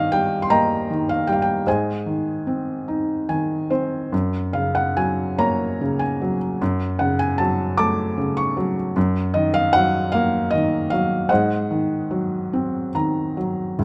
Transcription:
felt piano
Already playing: G2 D#3 D#5 F5
0.12 G3 G5
0.42 C6
0.50 A#3 D#5 G5 A#5
0.90 D#3
1.09 F5
1.27 G3 G5
1.32 F5
1.42 G5
1.67 G#2 C5 D#5 G#5
2.06 D#3
2.47 C4
2.88 D#4
3.29 D#3 G#5
3.70 C4 C5
4.12 F#2
4.53 C#3 F5
4.75 F#5
4.97 F#3 G#5
5.38 A#3 C#5 A#5
5.81 C#3
5.99 G#5
6.22 F#3
6.62 F#2
6.99 C#3 F#5
7.19 G#5
7.38 F#3 A5
7.77 A3 A5 D6
8.18 C#3
8.37 C#6
8.57 F#3
8.96 F#2
9.34 D#3 D#5
9.54 F5
9.73 F#3 F#5
10.12 A#3 F5
10.51 D#3 D#5
10.90 F#3 F5
11.29 G#2 C5 D#5 F#5
11.71 D#3
12.11 F#3
12.53 C4
12.95 D#3 A#5
13.37 F#3
13.79 C#2

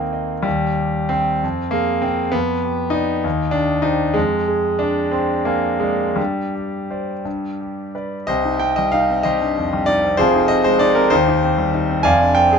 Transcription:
grand piano
Already playing: D#2 A#3 C4 D#4 G4 D#5 G5 A#5
0.13 D#5
0.42 D#2 G3
0.79 G4
1.09 C4 C5 G5
1.43 F2
1.71 A#3 G#4
2.02 C4 C5 F5
2.32 F2 B3
2.63 G4
2.90 D#4 D5 G5
3.24 D#2
3.51 D4 G4
3.82 D#4 C5 G5
4.14 F2 G#3
4.48 G#4
4.79 D4 D5
5.11 C4 C6
5.45 A#3 G#5
5.80 G#3 D5
6.16 G2 G3
6.55 G4
6.91 C5 D5
7.25 G2
7.60 G4
7.95 B4 D5
8.27 C2 G4 C5 D#5
8.45 D#4
8.59 C4 G5
8.76 G3 D#5
8.92 D#4 F5
9.10 C4
9.23 G3 G4 C5 D#5
9.42 G2
9.58 F2
9.73 G3
9.86 D#4 D5
10.04 C4
10.17 F1 F2 F4 G#4 C5
10.35 D#4
10.48 C4 D#5
10.64 G#3 C5
10.79 D#4 D5
10.95 C4 A#4
11.10 D#2 D#4 G4 C5
11.28 D#4
11.44 C4
11.58 G3
11.74 D#4
11.90 C4
12.03 F1 F2 D5 F5 G#5
12.21 D4
12.35 C4 G5
12.52 G#4

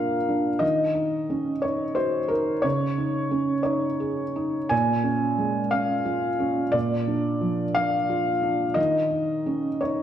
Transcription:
felt piano
Already playing: A#2 A#3 D4 F4 A#4 F5
0.29 D4
0.59 D#3 D#5
0.95 D#4
1.30 C#4
1.62 D#4 C#5
1.95 F#4 C5
2.28 D#4 A#4
2.62 C#3 C#5
2.98 D#4
3.31 C#4
3.63 D#4 C#5
4.00 G#4
4.36 D#4
4.69 A#2 G#5
5.04 C#4
5.38 G#3
5.71 C#4 F5
6.05 F4
6.40 C#4
6.72 A#2 D5
7.08 D4
7.41 F3
7.75 D4 F5
8.10 F4
8.43 D4
8.74 D#3 D#5
9.10 D#4
9.46 C#4
9.81 D#4 C#5

